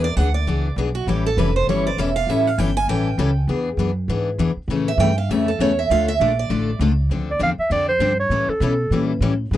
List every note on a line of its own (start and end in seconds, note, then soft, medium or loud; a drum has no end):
0.00 0.16 E2 medium
0.00 0.16 D5 medium
0.17 0.46 D2 medium
0.17 0.28 E3 medium
0.17 0.28 B3 medium
0.17 0.28 D4 medium
0.17 0.28 G#4 medium
0.17 0.34 F#5 medium
0.34 0.74 D5 medium
0.47 0.76 C#2 medium
0.47 0.67 E3 medium
0.47 0.67 B3 medium
0.47 0.67 D4 medium
0.47 0.67 G#4 medium
0.76 1.06 B1 medium
0.76 0.88 E3 medium
0.76 0.89 B3 medium
0.76 0.89 D4 medium
0.76 0.89 G#4 medium
0.95 1.07 F#4 medium
1.07 1.37 A1 medium
1.07 1.27 E3 medium
1.07 1.27 G3 medium
1.07 1.27 C#4 medium
1.07 1.27 E4 medium
1.07 1.26 G4 medium
1.07 1.28 A4 medium
1.26 1.38 A4 medium
1.37 1.66 F1 medium
1.37 1.49 E3 medium
1.37 1.49 G3 medium
1.37 1.49 C#4 medium
1.37 1.49 E4 medium
1.37 1.49 A4 medium
1.37 1.55 B4 medium
1.56 1.68 C5 medium
1.67 1.96 G1 medium
1.67 1.88 E3 medium
1.67 1.88 G3 medium
1.67 1.88 C#4 medium
1.67 1.88 E4 medium
1.67 1.88 A4 medium
1.67 1.86 C#5 medium
1.87 1.99 D5 medium
1.97 2.26 E1 medium
1.97 2.09 E3 medium
1.97 2.09 G3 medium
1.97 2.09 C#4 medium
1.97 2.09 E4 medium
1.97 2.09 A4 medium
1.97 2.15 E5 medium
2.16 2.30 F5 medium
2.27 2.57 A1 medium
2.27 2.48 E3 medium
2.27 2.48 G3 medium
2.27 2.48 C#4 medium
2.27 2.48 E4 medium
2.27 2.49 A4 medium
2.27 2.47 E5 medium
2.47 2.58 F5 medium
2.58 2.87 G1 medium
2.58 2.69 E3 medium
2.58 2.70 G3 medium
2.58 2.70 C#4 medium
2.58 2.70 E4 medium
2.58 2.70 A4 medium
2.58 2.76 G5 medium
2.77 2.89 G#5 medium
2.88 3.17 A1 medium
2.88 3.08 E3 medium
2.88 3.08 G3 medium
2.88 3.08 C#4 medium
2.88 3.09 E4 medium
2.88 3.09 A4 medium
2.88 3.45 G5 medium
3.18 3.47 C#2 medium
3.18 3.29 E3 medium
3.18 3.30 G3 medium
3.18 3.29 C#4 medium
3.18 3.30 E4 medium
3.18 3.30 A4 loud
3.48 3.77 E2 medium
3.48 3.68 E3 medium
3.48 3.68 B3 medium
3.48 3.69 D4 medium
3.48 3.69 G#4 medium
3.77 4.07 F#2 medium
3.77 3.90 E3 medium
3.77 3.90 B3 medium
3.77 3.90 D4 medium
3.77 3.90 G#4 medium
4.08 4.38 G#2 medium
4.08 4.29 E3 medium
4.08 4.29 B3 medium
4.08 4.29 D4 medium
4.08 4.29 G#4 medium
4.38 4.56 E2 medium
4.38 4.50 E3 medium
4.38 4.50 B3 medium
4.38 4.50 D4 medium
4.38 4.50 G#4 loud
4.56 muted upright bass stroke soft
4.68 4.97 A2 medium
4.68 4.89 C#3 medium
4.68 4.89 E3 medium
4.68 4.89 A3 medium
4.68 4.90 C#4 medium
4.68 4.90 A4 medium
4.88 5.00 E5 medium
4.98 5.28 G2 medium
4.98 5.10 C#3 medium
4.98 5.10 E3 medium
4.98 5.11 A3 medium
4.98 5.11 C#4 medium
4.98 5.11 A4 medium
4.98 5.17 G5 medium
5.18 5.31 F5 medium
5.29 5.58 F2 medium
5.29 5.50 C#3 medium
5.29 5.50 E3 medium
5.29 5.50 A3 medium
5.29 5.50 C#4 medium
5.29 5.50 A4 medium
5.29 5.48 E5 medium
5.48 5.60 A4 medium
5.59 5.89 E2 medium
5.59 5.71 C#3 medium
5.59 5.71 E3 medium
5.59 5.71 A3 medium
5.59 5.71 C#4 loud
5.59 5.71 A4 loud
5.59 5.78 C#5 medium
5.79 5.90 E5 medium
5.90 6.19 D2 medium
5.90 6.09 D3 medium
5.90 6.10 A3 medium
5.90 6.10 D4 medium
5.90 6.10 F4 medium
5.90 6.10 A4 medium
5.90 6.08 F5 medium
6.08 6.20 E5 loud
6.20 6.49 A#1 medium
6.20 6.31 D3 medium
6.20 6.31 A3 medium
6.20 6.31 D4 medium
6.20 6.31 F4 medium
6.20 6.31 A4 medium
6.20 6.38 D5 medium
6.39 6.78 D5 medium
6.50 6.79 A1 medium
6.50 6.69 D3 medium
6.50 6.69 A3 medium
6.50 6.70 D4 medium
6.50 6.70 F4 medium
6.50 6.70 A4 medium
6.79 7.09 C#2 medium
6.79 6.91 D3 medium
6.79 6.91 A3 medium
6.79 6.91 D4 medium
6.79 6.92 F4 medium
6.79 6.92 A4 loud
7.09 7.39 D2 medium
7.09 7.30 D3 medium
7.09 7.30 F3 medium
7.09 7.30 C4 medium
7.09 7.31 D4 medium
7.09 7.31 A4 medium
7.30 7.41 D5 medium
7.39 7.57 E2 medium
7.39 7.51 D3 medium
7.39 7.51 F3 medium
7.39 7.51 C4 medium
7.39 7.51 D4 medium
7.39 7.51 A4 medium
7.39 7.51 F5 loud
7.58 7.71 E5 medium
7.58 muted upright bass stroke soft
7.70 7.99 F2 medium
7.70 7.90 D3 medium
7.70 7.90 F3 medium
7.70 7.90 C4 medium
7.70 7.91 D4 medium
7.70 7.91 A4 medium
7.70 7.88 D5 loud
7.89 8.17 C5 loud
7.99 8.29 G2 medium
7.99 8.11 D3 medium
7.99 8.11 F3 medium
7.99 8.12 C4 medium
7.99 8.12 D4 medium
7.99 8.12 A4 medium
8.20 8.51 C#5 medium
8.30 8.47 A2 medium
8.30 8.50 E3 medium
8.30 8.51 G3 medium
8.30 8.51 C#4 medium
8.30 8.51 E4 medium
8.30 8.51 A4 medium
8.48 9.10 A4 medium
8.48 muted upright bass stroke soft
8.60 8.90 B2 loud
8.60 8.72 E3 medium
8.60 8.72 G3 medium
8.60 8.72 C#4 medium
8.60 8.73 E4 medium
8.60 8.73 A4 medium
8.91 9.20 A#2 medium
8.91 9.11 E3 medium
8.91 9.11 G3 medium
8.91 9.12 C#4 medium
8.91 9.12 E4 medium
8.91 9.12 A4 medium
9.20 9.50 A2 medium
9.20 9.32 E3 medium
9.20 9.33 G3 medium
9.20 9.33 C#4 medium
9.20 9.33 E4 loud
9.20 9.33 A4 medium
9.51 9.57 G#2 medium
9.51 9.57 D3 medium
9.51 9.57 G#3 medium
9.51 9.57 B3 medium